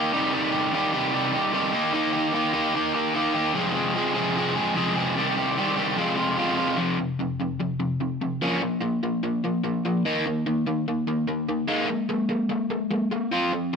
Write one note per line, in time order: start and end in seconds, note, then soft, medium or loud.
0.00 0.11 D#3 medium
0.00 0.11 A#3 medium
0.00 0.13 D#4 medium
0.00 0.12 G4 loud
0.13 0.31 C3 medium
0.13 0.32 D#3 medium
0.13 0.33 G3 medium
0.13 0.33 D#4 medium
0.13 0.34 G4 loud
0.32 0.72 C3 medium
0.32 0.71 D#3 medium
0.32 0.54 G3 medium
0.32 0.53 D#4 loud
0.32 0.52 G4 loud
0.52 0.72 G3 medium
0.52 0.73 D#4 medium
0.52 0.74 G4 medium
0.72 0.94 D#3 medium
0.72 0.94 G3 medium
0.72 0.93 D#4 medium
0.72 0.93 G4 medium
0.93 1.34 C3 medium
0.93 1.11 D#3 medium
0.93 1.12 G3 medium
0.93 1.13 D#4 medium
0.93 1.13 G4 medium
1.12 1.53 D#3 medium
1.12 1.34 G3 medium
1.12 1.33 D#4 medium
1.12 1.31 G4 medium
1.33 1.52 G3 soft
1.33 1.53 D#4 medium
1.33 1.54 G4 medium
1.53 1.72 C3 medium
1.53 1.72 D#3 medium
1.53 1.72 G3 medium
1.53 1.73 D#4 medium
1.53 1.72 G4 loud
1.73 1.92 D#3 medium
1.73 1.92 A#3 medium
1.73 1.93 D#4 medium
1.73 1.94 G4 loud
1.93 2.32 D#3 medium
1.93 2.14 A#3 loud
1.93 2.13 D#4 medium
1.93 2.11 G4 medium
2.13 2.32 A#3 medium
2.13 2.33 D#4 medium
2.13 2.34 G4 medium
2.33 2.54 D#3 medium
2.33 2.53 A#3 medium
2.33 2.52 D#4 medium
2.33 2.52 G4 medium
2.53 2.73 D#3 medium
2.53 2.73 A#3 medium
2.53 2.74 D#4 medium
2.53 2.75 G4 loud
2.74 3.13 D#3 medium
2.74 2.95 A#3 medium
2.74 2.94 D#4 medium
2.74 2.93 G4 medium
2.94 3.14 A#3 medium
2.94 3.14 D#4 medium
2.94 3.16 G4 medium
3.14 3.54 D#3 medium
3.14 3.36 A#3 medium
3.14 3.35 D#4 medium
3.14 3.33 G4 loud
3.34 3.55 A#3 medium
3.34 3.54 D#4 medium
3.34 3.54 G4 medium
3.54 3.95 F2 medium
3.54 3.95 C3 medium
3.54 3.76 F3 loud
3.54 3.75 G#3 loud
3.54 3.75 C4 loud
3.54 3.73 G#4 medium
3.75 3.93 F3 medium
3.75 3.94 G#3 medium
3.75 3.96 C4 medium
3.75 3.96 G#4 medium
3.95 4.16 F3 medium
3.95 4.15 G#3 medium
3.95 4.15 C4 medium
3.95 4.13 G#4 medium
4.15 4.57 F2 medium
4.15 4.57 C3 medium
4.15 4.34 F3 medium
4.15 4.35 G#3 medium
4.15 4.37 C4 medium
4.15 4.37 G#4 loud
4.36 4.56 F3 medium
4.36 4.55 G#3 medium
4.36 4.55 C4 medium
4.36 4.54 G#4 medium
4.55 4.75 F3 medium
4.55 4.76 G#3 medium
4.55 4.77 C4 medium
4.55 4.76 G#4 medium
4.74 5.15 F2 medium
4.74 5.14 C3 loud
4.74 4.97 F3 medium
4.74 4.96 G#3 medium
4.74 4.96 C4 medium
4.74 4.94 G#4 loud
4.95 5.16 F3 medium
4.95 5.16 G#3 medium
4.95 5.17 C4 medium
4.95 5.15 G#4 medium
5.15 5.57 C3 medium
5.15 5.55 D#3 medium
5.15 5.38 G3 medium
5.15 5.36 C4 medium
5.15 5.35 G4 medium
5.36 5.56 G3 medium
5.36 5.56 C4 medium
5.36 5.57 G4 medium
5.56 5.77 D#3 medium
5.56 5.76 G3 medium
5.56 5.76 C4 medium
5.56 5.75 G4 medium
5.76 5.95 C3 medium
5.76 5.97 D#3 medium
5.76 5.97 G3 medium
5.76 5.96 C4 medium
5.76 5.96 G4 medium
5.96 6.35 F2 medium
5.96 6.36 C3 medium
5.96 6.18 F3 loud
5.96 6.17 G#3 medium
5.96 6.16 C4 loud
5.96 6.15 F4 medium
6.16 6.36 F3 medium
6.16 6.37 G#3 medium
6.16 6.37 C4 medium
6.16 6.38 F4 medium
6.36 6.76 F2 medium
6.36 6.77 C3 medium
6.36 6.58 F3 medium
6.36 6.58 G#3 medium
6.36 6.57 C4 loud
6.36 6.56 F4 loud
6.57 6.77 F3 medium
6.57 6.78 G#3 medium
6.57 6.77 C4 medium
6.57 6.77 F4 medium
6.77 6.97 F2 medium
6.77 6.98 C3 medium
6.77 6.98 F3 medium
6.99 7.17 F2 medium
6.99 7.17 C3 medium
7.19 7.38 F2 medium
7.19 7.38 C3 medium
7.40 7.58 F2 medium
7.40 7.59 C3 medium
7.60 7.78 F2 medium
7.60 7.79 C3 medium
7.80 7.99 F2 medium
7.80 7.99 C3 medium
8.00 8.19 F2 medium
8.00 8.19 C3 medium
8.21 8.40 F2 medium
8.21 8.40 C3 medium
8.42 8.60 F3 medium
8.42 8.61 A#3 medium
8.42 8.62 C#4 medium
8.62 8.80 F3 medium
8.62 8.81 A#3 medium
8.81 9.01 F3 medium
8.81 9.01 A#3 medium
9.03 9.22 F3 medium
9.03 9.22 A#3 medium
9.23 9.42 F3 medium
9.23 9.42 A#3 medium
9.44 9.62 F3 medium
9.44 9.63 A#3 medium
9.64 9.82 F3 medium
9.64 9.83 A#3 medium
9.85 10.03 F3 medium
9.85 10.04 A#3 medium
10.05 10.25 D#3 medium
10.05 10.25 A#3 medium
10.05 10.25 D#4 medium
10.26 10.44 D#3 medium
10.26 10.45 A#3 medium
10.46 10.65 D#3 medium
10.46 10.65 A#3 medium
10.67 10.85 D#3 medium
10.67 10.85 A#3 medium
10.88 11.06 D#3 medium
10.88 11.06 A#3 medium
11.07 11.26 D#3 medium
11.07 11.26 A#3 medium
11.28 11.46 D#3 medium
11.28 11.47 A#3 medium
11.49 11.67 D#3 medium
11.49 11.67 A#3 medium
11.68 11.87 G#3 medium
11.68 11.88 A#3 medium
11.68 11.88 D#4 medium
11.89 12.07 G#3 medium
11.89 12.08 A#3 medium
12.09 12.28 G#3 medium
12.09 12.28 A#3 medium
12.29 12.48 G#3 medium
12.29 12.48 A#3 medium
12.49 12.68 G#3 medium
12.49 12.68 A#3 medium
12.70 12.89 G#3 medium
12.70 12.89 A#3 medium
12.91 13.09 G#3 medium
12.91 13.09 A#3 medium
13.11 13.30 G#3 medium
13.11 13.30 A#3 medium
13.31 13.51 F3 medium
13.31 13.51 C4 medium
13.31 13.51 F4 medium
13.53 13.71 F3 medium
13.53 13.71 C4 medium